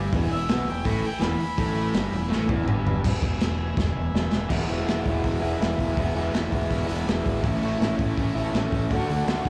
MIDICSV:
0, 0, Header, 1, 8, 480
1, 0, Start_track
1, 0, Tempo, 365408
1, 176, Time_signature, 4, 2, 24, 8
1, 12466, End_track
2, 0, Start_track
2, 0, Title_t, "Harmonica"
2, 0, Program_c, 0, 22
2, 418, Note_on_c, 0, 76, 115
2, 882, Note_off_c, 0, 76, 0
2, 920, Note_on_c, 0, 79, 101
2, 1150, Note_on_c, 0, 83, 107
2, 1170, Note_off_c, 0, 79, 0
2, 1375, Note_off_c, 0, 83, 0
2, 1398, Note_on_c, 0, 79, 105
2, 1614, Note_off_c, 0, 79, 0
2, 1622, Note_on_c, 0, 83, 125
2, 3012, Note_off_c, 0, 83, 0
2, 12466, End_track
3, 0, Start_track
3, 0, Title_t, "Transistor combo organ"
3, 0, Program_c, 1, 18
3, 0, Note_on_c, 1, 76, 67
3, 0, Note_on_c, 1, 80, 86
3, 140, Note_off_c, 1, 76, 0
3, 151, Note_off_c, 1, 80, 0
3, 176, Note_on_c, 1, 71, 79
3, 193, Note_on_c, 1, 76, 73
3, 203, Note_on_c, 1, 80, 91
3, 3956, Note_off_c, 1, 71, 0
3, 3965, Note_off_c, 1, 76, 0
3, 3970, Note_off_c, 1, 80, 0
3, 4034, Note_on_c, 1, 71, 73
3, 4044, Note_on_c, 1, 76, 74
3, 4068, Note_on_c, 1, 80, 90
3, 5900, Note_off_c, 1, 71, 0
3, 5906, Note_off_c, 1, 76, 0
3, 5918, Note_off_c, 1, 80, 0
3, 5935, Note_on_c, 1, 71, 74
3, 5966, Note_on_c, 1, 76, 66
3, 5982, Note_on_c, 1, 80, 75
3, 9723, Note_off_c, 1, 71, 0
3, 9724, Note_on_c, 1, 69, 72
3, 9738, Note_off_c, 1, 76, 0
3, 9740, Note_on_c, 1, 73, 64
3, 9746, Note_off_c, 1, 80, 0
3, 9767, Note_on_c, 1, 76, 78
3, 11634, Note_off_c, 1, 69, 0
3, 11643, Note_off_c, 1, 73, 0
3, 11656, Note_off_c, 1, 76, 0
3, 11687, Note_on_c, 1, 69, 71
3, 11705, Note_on_c, 1, 74, 67
3, 11705, Note_on_c, 1, 78, 81
3, 12466, Note_off_c, 1, 69, 0
3, 12466, Note_off_c, 1, 74, 0
3, 12466, Note_off_c, 1, 78, 0
3, 12466, End_track
4, 0, Start_track
4, 0, Title_t, "Overdriven electric guitar"
4, 0, Program_c, 2, 29
4, 0, Note_on_c, 2, 43, 94
4, 0, Note_on_c, 2, 55, 111
4, 166, Note_off_c, 2, 43, 0
4, 174, Note_off_c, 2, 55, 0
4, 187, Note_on_c, 2, 40, 98
4, 197, Note_on_c, 2, 52, 113
4, 387, Note_off_c, 2, 40, 0
4, 402, Note_on_c, 2, 40, 80
4, 419, Note_off_c, 2, 52, 0
4, 601, Note_off_c, 2, 40, 0
4, 647, Note_on_c, 2, 47, 108
4, 664, Note_on_c, 2, 59, 111
4, 880, Note_on_c, 2, 40, 73
4, 884, Note_off_c, 2, 47, 0
4, 892, Note_off_c, 2, 59, 0
4, 1079, Note_off_c, 2, 40, 0
4, 1119, Note_on_c, 2, 45, 105
4, 1122, Note_on_c, 2, 57, 118
4, 1360, Note_off_c, 2, 45, 0
4, 1361, Note_off_c, 2, 57, 0
4, 1570, Note_on_c, 2, 40, 96
4, 1576, Note_on_c, 2, 52, 111
4, 1825, Note_off_c, 2, 40, 0
4, 1827, Note_off_c, 2, 52, 0
4, 2068, Note_on_c, 2, 45, 99
4, 2077, Note_on_c, 2, 57, 112
4, 2553, Note_off_c, 2, 45, 0
4, 2557, Note_off_c, 2, 57, 0
4, 2561, Note_on_c, 2, 43, 106
4, 2574, Note_on_c, 2, 55, 117
4, 2795, Note_off_c, 2, 43, 0
4, 2800, Note_on_c, 2, 40, 77
4, 2806, Note_off_c, 2, 55, 0
4, 2998, Note_off_c, 2, 40, 0
4, 3015, Note_on_c, 2, 45, 107
4, 3032, Note_on_c, 2, 57, 119
4, 3245, Note_on_c, 2, 40, 95
4, 3264, Note_on_c, 2, 52, 104
4, 3266, Note_off_c, 2, 45, 0
4, 3274, Note_off_c, 2, 57, 0
4, 3497, Note_off_c, 2, 40, 0
4, 3503, Note_on_c, 2, 43, 105
4, 3508, Note_off_c, 2, 52, 0
4, 3513, Note_on_c, 2, 55, 103
4, 3988, Note_off_c, 2, 43, 0
4, 3994, Note_off_c, 2, 55, 0
4, 5891, Note_on_c, 2, 40, 87
4, 5903, Note_on_c, 2, 47, 89
4, 5905, Note_on_c, 2, 52, 98
4, 5916, Note_on_c, 2, 56, 90
4, 5928, Note_on_c, 2, 59, 102
4, 5935, Note_on_c, 2, 64, 108
4, 6155, Note_off_c, 2, 64, 0
4, 6160, Note_on_c, 2, 64, 80
4, 6170, Note_off_c, 2, 59, 0
4, 6176, Note_on_c, 2, 59, 74
4, 6178, Note_off_c, 2, 56, 0
4, 6183, Note_on_c, 2, 56, 68
4, 6188, Note_off_c, 2, 52, 0
4, 6193, Note_on_c, 2, 52, 67
4, 6377, Note_off_c, 2, 52, 0
4, 6382, Note_off_c, 2, 56, 0
4, 6382, Note_on_c, 2, 52, 82
4, 6387, Note_on_c, 2, 56, 83
4, 6394, Note_off_c, 2, 47, 0
4, 6397, Note_off_c, 2, 59, 0
4, 6403, Note_on_c, 2, 59, 85
4, 6432, Note_off_c, 2, 64, 0
4, 6437, Note_on_c, 2, 64, 95
4, 6622, Note_off_c, 2, 64, 0
4, 6627, Note_on_c, 2, 64, 80
4, 6635, Note_off_c, 2, 59, 0
4, 6640, Note_on_c, 2, 59, 72
4, 6649, Note_off_c, 2, 56, 0
4, 6654, Note_on_c, 2, 56, 72
4, 6669, Note_off_c, 2, 52, 0
4, 6674, Note_on_c, 2, 52, 64
4, 7104, Note_off_c, 2, 59, 0
4, 7106, Note_off_c, 2, 64, 0
4, 7111, Note_on_c, 2, 64, 82
4, 7120, Note_on_c, 2, 59, 71
4, 7126, Note_off_c, 2, 56, 0
4, 7142, Note_on_c, 2, 56, 75
4, 7150, Note_off_c, 2, 52, 0
4, 7155, Note_on_c, 2, 52, 67
4, 7324, Note_off_c, 2, 40, 0
4, 7329, Note_on_c, 2, 40, 88
4, 7343, Note_off_c, 2, 56, 0
4, 7346, Note_off_c, 2, 52, 0
4, 7350, Note_on_c, 2, 47, 100
4, 7351, Note_on_c, 2, 52, 102
4, 7358, Note_off_c, 2, 59, 0
4, 7359, Note_on_c, 2, 56, 103
4, 7369, Note_off_c, 2, 64, 0
4, 7374, Note_on_c, 2, 59, 99
4, 7375, Note_on_c, 2, 64, 113
4, 7809, Note_off_c, 2, 40, 0
4, 7820, Note_off_c, 2, 47, 0
4, 7824, Note_on_c, 2, 40, 93
4, 7831, Note_off_c, 2, 52, 0
4, 7836, Note_on_c, 2, 47, 89
4, 7837, Note_on_c, 2, 52, 93
4, 7839, Note_off_c, 2, 56, 0
4, 7843, Note_off_c, 2, 59, 0
4, 7855, Note_on_c, 2, 56, 99
4, 7858, Note_on_c, 2, 59, 105
4, 7865, Note_off_c, 2, 64, 0
4, 7870, Note_on_c, 2, 64, 108
4, 8073, Note_off_c, 2, 64, 0
4, 8079, Note_off_c, 2, 59, 0
4, 8079, Note_on_c, 2, 64, 84
4, 8090, Note_off_c, 2, 56, 0
4, 8095, Note_on_c, 2, 59, 71
4, 8105, Note_on_c, 2, 56, 71
4, 8119, Note_off_c, 2, 52, 0
4, 8124, Note_on_c, 2, 52, 67
4, 8316, Note_off_c, 2, 40, 0
4, 8321, Note_off_c, 2, 52, 0
4, 8322, Note_off_c, 2, 47, 0
4, 8324, Note_off_c, 2, 56, 0
4, 8326, Note_on_c, 2, 52, 89
4, 8340, Note_on_c, 2, 56, 88
4, 8351, Note_off_c, 2, 59, 0
4, 8367, Note_on_c, 2, 59, 90
4, 8377, Note_off_c, 2, 64, 0
4, 8382, Note_on_c, 2, 64, 97
4, 8542, Note_off_c, 2, 64, 0
4, 8547, Note_on_c, 2, 64, 74
4, 8552, Note_off_c, 2, 59, 0
4, 8566, Note_off_c, 2, 56, 0
4, 8568, Note_on_c, 2, 59, 76
4, 8582, Note_on_c, 2, 56, 68
4, 8599, Note_off_c, 2, 52, 0
4, 8604, Note_on_c, 2, 52, 62
4, 9017, Note_off_c, 2, 64, 0
4, 9032, Note_on_c, 2, 64, 78
4, 9034, Note_off_c, 2, 59, 0
4, 9049, Note_off_c, 2, 56, 0
4, 9050, Note_on_c, 2, 59, 72
4, 9065, Note_on_c, 2, 56, 69
4, 9074, Note_off_c, 2, 52, 0
4, 9089, Note_on_c, 2, 52, 64
4, 9271, Note_on_c, 2, 40, 90
4, 9281, Note_off_c, 2, 52, 0
4, 9283, Note_on_c, 2, 47, 101
4, 9295, Note_off_c, 2, 56, 0
4, 9296, Note_off_c, 2, 59, 0
4, 9297, Note_on_c, 2, 52, 93
4, 9302, Note_off_c, 2, 64, 0
4, 9311, Note_on_c, 2, 56, 102
4, 9312, Note_on_c, 2, 59, 101
4, 9317, Note_on_c, 2, 64, 107
4, 9747, Note_off_c, 2, 40, 0
4, 9753, Note_off_c, 2, 47, 0
4, 9756, Note_off_c, 2, 52, 0
4, 9763, Note_on_c, 2, 45, 92
4, 9767, Note_off_c, 2, 56, 0
4, 9767, Note_off_c, 2, 59, 0
4, 9770, Note_off_c, 2, 64, 0
4, 9771, Note_on_c, 2, 52, 99
4, 9794, Note_on_c, 2, 57, 99
4, 9801, Note_on_c, 2, 61, 104
4, 9821, Note_on_c, 2, 64, 113
4, 9990, Note_off_c, 2, 64, 0
4, 10005, Note_on_c, 2, 64, 82
4, 10010, Note_off_c, 2, 61, 0
4, 10026, Note_on_c, 2, 61, 72
4, 10048, Note_off_c, 2, 57, 0
4, 10054, Note_on_c, 2, 57, 72
4, 10208, Note_off_c, 2, 52, 0
4, 10224, Note_on_c, 2, 52, 72
4, 10235, Note_off_c, 2, 57, 0
4, 10235, Note_off_c, 2, 61, 0
4, 10240, Note_on_c, 2, 57, 90
4, 10248, Note_off_c, 2, 45, 0
4, 10251, Note_on_c, 2, 61, 86
4, 10261, Note_off_c, 2, 64, 0
4, 10277, Note_on_c, 2, 64, 101
4, 10459, Note_off_c, 2, 64, 0
4, 10475, Note_on_c, 2, 64, 75
4, 10486, Note_off_c, 2, 61, 0
4, 10501, Note_on_c, 2, 61, 64
4, 10517, Note_off_c, 2, 57, 0
4, 10522, Note_on_c, 2, 57, 66
4, 10719, Note_off_c, 2, 52, 0
4, 10947, Note_off_c, 2, 64, 0
4, 10963, Note_on_c, 2, 64, 77
4, 10977, Note_off_c, 2, 61, 0
4, 10993, Note_on_c, 2, 61, 68
4, 10996, Note_off_c, 2, 57, 0
4, 11012, Note_on_c, 2, 57, 63
4, 11205, Note_on_c, 2, 45, 96
4, 11228, Note_off_c, 2, 57, 0
4, 11230, Note_off_c, 2, 61, 0
4, 11230, Note_on_c, 2, 52, 89
4, 11243, Note_off_c, 2, 64, 0
4, 11244, Note_on_c, 2, 57, 109
4, 11246, Note_on_c, 2, 61, 105
4, 11259, Note_on_c, 2, 64, 106
4, 11678, Note_off_c, 2, 45, 0
4, 11690, Note_off_c, 2, 52, 0
4, 11697, Note_off_c, 2, 57, 0
4, 11698, Note_off_c, 2, 61, 0
4, 11699, Note_on_c, 2, 50, 91
4, 11704, Note_off_c, 2, 64, 0
4, 11723, Note_on_c, 2, 57, 96
4, 11724, Note_on_c, 2, 62, 94
4, 11737, Note_on_c, 2, 66, 101
4, 11913, Note_off_c, 2, 66, 0
4, 11929, Note_on_c, 2, 66, 80
4, 11946, Note_off_c, 2, 62, 0
4, 11962, Note_off_c, 2, 57, 0
4, 11962, Note_on_c, 2, 62, 74
4, 11978, Note_on_c, 2, 57, 67
4, 12135, Note_off_c, 2, 50, 0
4, 12151, Note_on_c, 2, 50, 80
4, 12163, Note_off_c, 2, 57, 0
4, 12178, Note_off_c, 2, 62, 0
4, 12179, Note_on_c, 2, 57, 87
4, 12194, Note_on_c, 2, 62, 86
4, 12201, Note_off_c, 2, 66, 0
4, 12217, Note_on_c, 2, 66, 88
4, 12366, Note_off_c, 2, 66, 0
4, 12382, Note_on_c, 2, 66, 71
4, 12393, Note_off_c, 2, 62, 0
4, 12409, Note_on_c, 2, 62, 66
4, 12420, Note_off_c, 2, 57, 0
4, 12466, Note_off_c, 2, 50, 0
4, 12466, Note_off_c, 2, 62, 0
4, 12466, Note_off_c, 2, 66, 0
4, 12466, End_track
5, 0, Start_track
5, 0, Title_t, "Fingered electric bass"
5, 0, Program_c, 3, 33
5, 0, Note_on_c, 3, 31, 105
5, 140, Note_off_c, 3, 31, 0
5, 164, Note_on_c, 3, 28, 112
5, 393, Note_off_c, 3, 28, 0
5, 403, Note_on_c, 3, 28, 92
5, 632, Note_off_c, 3, 28, 0
5, 647, Note_on_c, 3, 35, 97
5, 859, Note_off_c, 3, 35, 0
5, 867, Note_on_c, 3, 28, 76
5, 1103, Note_off_c, 3, 28, 0
5, 1130, Note_on_c, 3, 33, 102
5, 1349, Note_off_c, 3, 33, 0
5, 1595, Note_on_c, 3, 28, 111
5, 1827, Note_off_c, 3, 28, 0
5, 2080, Note_on_c, 3, 33, 107
5, 2532, Note_off_c, 3, 33, 0
5, 2560, Note_on_c, 3, 31, 103
5, 2780, Note_off_c, 3, 31, 0
5, 2788, Note_on_c, 3, 28, 85
5, 3022, Note_off_c, 3, 28, 0
5, 3043, Note_on_c, 3, 33, 98
5, 3254, Note_off_c, 3, 33, 0
5, 3262, Note_on_c, 3, 28, 102
5, 3494, Note_off_c, 3, 28, 0
5, 3502, Note_on_c, 3, 31, 108
5, 4007, Note_off_c, 3, 31, 0
5, 4007, Note_on_c, 3, 28, 107
5, 4210, Note_off_c, 3, 28, 0
5, 4225, Note_on_c, 3, 28, 93
5, 4437, Note_off_c, 3, 28, 0
5, 4492, Note_on_c, 3, 28, 94
5, 4894, Note_off_c, 3, 28, 0
5, 4950, Note_on_c, 3, 28, 105
5, 5159, Note_off_c, 3, 28, 0
5, 5197, Note_on_c, 3, 28, 101
5, 5403, Note_off_c, 3, 28, 0
5, 5435, Note_on_c, 3, 28, 103
5, 5642, Note_off_c, 3, 28, 0
5, 5691, Note_on_c, 3, 28, 99
5, 5891, Note_off_c, 3, 28, 0
5, 5914, Note_on_c, 3, 28, 107
5, 6091, Note_off_c, 3, 28, 0
5, 6166, Note_on_c, 3, 28, 91
5, 6339, Note_off_c, 3, 28, 0
5, 6409, Note_on_c, 3, 28, 95
5, 6581, Note_off_c, 3, 28, 0
5, 6643, Note_on_c, 3, 28, 88
5, 6817, Note_off_c, 3, 28, 0
5, 6889, Note_on_c, 3, 28, 89
5, 7061, Note_off_c, 3, 28, 0
5, 7126, Note_on_c, 3, 28, 92
5, 7299, Note_off_c, 3, 28, 0
5, 7361, Note_on_c, 3, 28, 101
5, 7536, Note_off_c, 3, 28, 0
5, 7608, Note_on_c, 3, 28, 92
5, 7781, Note_off_c, 3, 28, 0
5, 7840, Note_on_c, 3, 28, 100
5, 8016, Note_off_c, 3, 28, 0
5, 8077, Note_on_c, 3, 28, 96
5, 8254, Note_off_c, 3, 28, 0
5, 8319, Note_on_c, 3, 28, 88
5, 8496, Note_off_c, 3, 28, 0
5, 8569, Note_on_c, 3, 28, 84
5, 8742, Note_off_c, 3, 28, 0
5, 8816, Note_on_c, 3, 28, 95
5, 8987, Note_off_c, 3, 28, 0
5, 9058, Note_on_c, 3, 28, 95
5, 9228, Note_off_c, 3, 28, 0
5, 9288, Note_on_c, 3, 28, 99
5, 9462, Note_off_c, 3, 28, 0
5, 9539, Note_on_c, 3, 32, 100
5, 9709, Note_off_c, 3, 32, 0
5, 9766, Note_on_c, 3, 33, 104
5, 9942, Note_off_c, 3, 33, 0
5, 10008, Note_on_c, 3, 33, 96
5, 10183, Note_off_c, 3, 33, 0
5, 10242, Note_on_c, 3, 33, 91
5, 10420, Note_off_c, 3, 33, 0
5, 10495, Note_on_c, 3, 33, 90
5, 10668, Note_off_c, 3, 33, 0
5, 10739, Note_on_c, 3, 33, 92
5, 10911, Note_off_c, 3, 33, 0
5, 10962, Note_on_c, 3, 33, 92
5, 11140, Note_off_c, 3, 33, 0
5, 11205, Note_on_c, 3, 33, 101
5, 11382, Note_off_c, 3, 33, 0
5, 11457, Note_on_c, 3, 33, 91
5, 11630, Note_off_c, 3, 33, 0
5, 11703, Note_on_c, 3, 38, 97
5, 11875, Note_off_c, 3, 38, 0
5, 11949, Note_on_c, 3, 38, 96
5, 12119, Note_off_c, 3, 38, 0
5, 12178, Note_on_c, 3, 38, 92
5, 12353, Note_off_c, 3, 38, 0
5, 12417, Note_on_c, 3, 38, 88
5, 12466, Note_off_c, 3, 38, 0
5, 12466, End_track
6, 0, Start_track
6, 0, Title_t, "Muted fingered electric bass strokes"
6, 1357, Note_on_c, 9, 29, 41
6, 1488, Note_off_c, 9, 29, 0
6, 1851, Note_on_c, 9, 29, 43
6, 1983, Note_off_c, 9, 29, 0
6, 12466, End_track
7, 0, Start_track
7, 0, Title_t, "Muted overdriven electric guitar strokes"
7, 1340, Note_on_c, 9, 29, 63
7, 1471, Note_off_c, 9, 29, 0
7, 1850, Note_on_c, 9, 29, 65
7, 1982, Note_off_c, 9, 29, 0
7, 12466, End_track
8, 0, Start_track
8, 0, Title_t, "Drums"
8, 167, Note_on_c, 9, 36, 111
8, 178, Note_on_c, 9, 46, 83
8, 298, Note_off_c, 9, 36, 0
8, 309, Note_off_c, 9, 46, 0
8, 409, Note_on_c, 9, 46, 70
8, 541, Note_off_c, 9, 46, 0
8, 638, Note_on_c, 9, 46, 89
8, 651, Note_on_c, 9, 38, 127
8, 769, Note_off_c, 9, 46, 0
8, 782, Note_off_c, 9, 38, 0
8, 892, Note_on_c, 9, 46, 65
8, 1023, Note_off_c, 9, 46, 0
8, 1121, Note_on_c, 9, 36, 116
8, 1124, Note_on_c, 9, 46, 85
8, 1252, Note_off_c, 9, 36, 0
8, 1255, Note_off_c, 9, 46, 0
8, 1363, Note_on_c, 9, 46, 72
8, 1494, Note_off_c, 9, 46, 0
8, 1591, Note_on_c, 9, 46, 87
8, 1604, Note_on_c, 9, 38, 121
8, 1722, Note_off_c, 9, 46, 0
8, 1735, Note_off_c, 9, 38, 0
8, 1835, Note_on_c, 9, 46, 64
8, 1966, Note_off_c, 9, 46, 0
8, 2072, Note_on_c, 9, 46, 97
8, 2076, Note_on_c, 9, 36, 107
8, 2204, Note_off_c, 9, 46, 0
8, 2207, Note_off_c, 9, 36, 0
8, 2310, Note_on_c, 9, 46, 71
8, 2442, Note_off_c, 9, 46, 0
8, 2544, Note_on_c, 9, 46, 97
8, 2557, Note_on_c, 9, 38, 127
8, 2675, Note_off_c, 9, 46, 0
8, 2688, Note_off_c, 9, 38, 0
8, 2790, Note_on_c, 9, 46, 72
8, 2922, Note_off_c, 9, 46, 0
8, 3045, Note_on_c, 9, 38, 71
8, 3177, Note_off_c, 9, 38, 0
8, 3272, Note_on_c, 9, 36, 122
8, 3404, Note_off_c, 9, 36, 0
8, 3516, Note_on_c, 9, 45, 100
8, 3647, Note_off_c, 9, 45, 0
8, 3765, Note_on_c, 9, 43, 100
8, 3896, Note_off_c, 9, 43, 0
8, 3998, Note_on_c, 9, 36, 120
8, 4003, Note_on_c, 9, 49, 118
8, 4003, Note_on_c, 9, 57, 64
8, 4129, Note_off_c, 9, 36, 0
8, 4134, Note_off_c, 9, 49, 0
8, 4134, Note_off_c, 9, 57, 0
8, 4233, Note_on_c, 9, 36, 89
8, 4364, Note_off_c, 9, 36, 0
8, 4472, Note_on_c, 9, 57, 72
8, 4485, Note_on_c, 9, 38, 123
8, 4603, Note_off_c, 9, 57, 0
8, 4616, Note_off_c, 9, 38, 0
8, 4954, Note_on_c, 9, 36, 118
8, 4976, Note_on_c, 9, 38, 74
8, 5086, Note_off_c, 9, 36, 0
8, 5108, Note_off_c, 9, 38, 0
8, 5459, Note_on_c, 9, 38, 102
8, 5590, Note_off_c, 9, 38, 0
8, 5678, Note_on_c, 9, 38, 100
8, 5809, Note_off_c, 9, 38, 0
8, 5913, Note_on_c, 9, 36, 116
8, 5913, Note_on_c, 9, 49, 116
8, 6044, Note_off_c, 9, 36, 0
8, 6044, Note_off_c, 9, 49, 0
8, 6161, Note_on_c, 9, 46, 65
8, 6292, Note_off_c, 9, 46, 0
8, 6407, Note_on_c, 9, 46, 88
8, 6421, Note_on_c, 9, 38, 114
8, 6539, Note_off_c, 9, 46, 0
8, 6552, Note_off_c, 9, 38, 0
8, 6643, Note_on_c, 9, 36, 91
8, 6646, Note_on_c, 9, 46, 61
8, 6774, Note_off_c, 9, 36, 0
8, 6777, Note_off_c, 9, 46, 0
8, 6886, Note_on_c, 9, 36, 92
8, 6898, Note_on_c, 9, 46, 80
8, 7017, Note_off_c, 9, 36, 0
8, 7029, Note_off_c, 9, 46, 0
8, 7142, Note_on_c, 9, 46, 64
8, 7273, Note_off_c, 9, 46, 0
8, 7377, Note_on_c, 9, 46, 82
8, 7390, Note_on_c, 9, 38, 109
8, 7508, Note_off_c, 9, 46, 0
8, 7521, Note_off_c, 9, 38, 0
8, 7605, Note_on_c, 9, 36, 85
8, 7616, Note_on_c, 9, 46, 62
8, 7736, Note_off_c, 9, 36, 0
8, 7747, Note_off_c, 9, 46, 0
8, 7845, Note_on_c, 9, 36, 106
8, 7853, Note_on_c, 9, 46, 83
8, 7977, Note_off_c, 9, 36, 0
8, 7985, Note_off_c, 9, 46, 0
8, 8090, Note_on_c, 9, 46, 70
8, 8222, Note_off_c, 9, 46, 0
8, 8326, Note_on_c, 9, 46, 95
8, 8339, Note_on_c, 9, 38, 127
8, 8457, Note_off_c, 9, 46, 0
8, 8470, Note_off_c, 9, 38, 0
8, 8568, Note_on_c, 9, 36, 86
8, 8570, Note_on_c, 9, 46, 69
8, 8699, Note_off_c, 9, 36, 0
8, 8701, Note_off_c, 9, 46, 0
8, 8809, Note_on_c, 9, 36, 92
8, 8812, Note_on_c, 9, 46, 90
8, 8940, Note_off_c, 9, 36, 0
8, 8943, Note_off_c, 9, 46, 0
8, 9043, Note_on_c, 9, 46, 69
8, 9174, Note_off_c, 9, 46, 0
8, 9300, Note_on_c, 9, 46, 88
8, 9313, Note_on_c, 9, 38, 116
8, 9431, Note_off_c, 9, 46, 0
8, 9444, Note_off_c, 9, 38, 0
8, 9534, Note_on_c, 9, 46, 66
8, 9535, Note_on_c, 9, 36, 91
8, 9665, Note_off_c, 9, 46, 0
8, 9666, Note_off_c, 9, 36, 0
8, 9764, Note_on_c, 9, 46, 89
8, 9771, Note_on_c, 9, 36, 107
8, 9896, Note_off_c, 9, 46, 0
8, 9902, Note_off_c, 9, 36, 0
8, 10018, Note_on_c, 9, 46, 72
8, 10149, Note_off_c, 9, 46, 0
8, 10262, Note_on_c, 9, 46, 84
8, 10275, Note_on_c, 9, 38, 125
8, 10393, Note_off_c, 9, 46, 0
8, 10406, Note_off_c, 9, 38, 0
8, 10497, Note_on_c, 9, 36, 91
8, 10498, Note_on_c, 9, 46, 67
8, 10628, Note_off_c, 9, 36, 0
8, 10629, Note_off_c, 9, 46, 0
8, 10740, Note_on_c, 9, 36, 93
8, 10741, Note_on_c, 9, 46, 83
8, 10871, Note_off_c, 9, 36, 0
8, 10872, Note_off_c, 9, 46, 0
8, 10994, Note_on_c, 9, 46, 64
8, 11126, Note_off_c, 9, 46, 0
8, 11218, Note_on_c, 9, 46, 77
8, 11231, Note_on_c, 9, 38, 121
8, 11349, Note_off_c, 9, 46, 0
8, 11362, Note_off_c, 9, 38, 0
8, 11459, Note_on_c, 9, 36, 92
8, 11462, Note_on_c, 9, 46, 62
8, 11591, Note_off_c, 9, 36, 0
8, 11594, Note_off_c, 9, 46, 0
8, 11701, Note_on_c, 9, 36, 110
8, 11701, Note_on_c, 9, 46, 83
8, 11832, Note_off_c, 9, 36, 0
8, 11832, Note_off_c, 9, 46, 0
8, 11945, Note_on_c, 9, 46, 67
8, 12076, Note_off_c, 9, 46, 0
8, 12180, Note_on_c, 9, 46, 92
8, 12193, Note_on_c, 9, 38, 118
8, 12311, Note_off_c, 9, 46, 0
8, 12325, Note_off_c, 9, 38, 0
8, 12418, Note_on_c, 9, 36, 90
8, 12421, Note_on_c, 9, 46, 64
8, 12466, Note_off_c, 9, 36, 0
8, 12466, Note_off_c, 9, 46, 0
8, 12466, End_track
0, 0, End_of_file